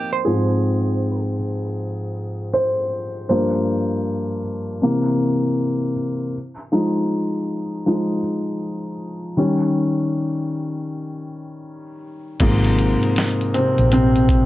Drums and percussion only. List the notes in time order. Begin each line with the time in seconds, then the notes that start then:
12.40 kick, closed hi-hat, crash
12.64 closed hi-hat
12.79 closed hi-hat
13.03 closed hi-hat
13.16 snare, closed hi-hat
13.41 closed hi-hat
13.54 closed hi-hat
13.78 closed hi-hat
13.92 closed hi-hat
14.16 closed hi-hat
14.29 kick, closed hi-hat